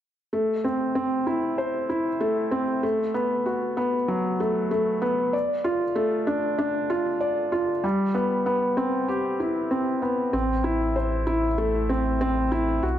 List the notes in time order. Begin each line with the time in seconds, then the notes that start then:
0.33 A3
0.64 C4
0.95 C4
1.27 E4
1.58 C5
1.89 E4
2.21 A3
2.51 C4
2.83 A3
3.14 B3
3.46 F#4
3.77 B3
4.08 F#3
4.40 A3
4.71 A3
5.02 B3
5.33 D5
5.64 F4
5.96 A3
6.27 D4
6.59 D4
6.90 F4
7.21 D5
7.52 F4
7.84 G3
8.15 B3
8.46 B3
8.77 C4
9.08 G4
9.40 E4
9.71 C4
10.02 B3
10.33 A1 C4
10.64 E4
10.96 C5
11.27 E4
11.58 A3
11.89 C4
12.21 C4
12.52 E4
12.83 B1 F#4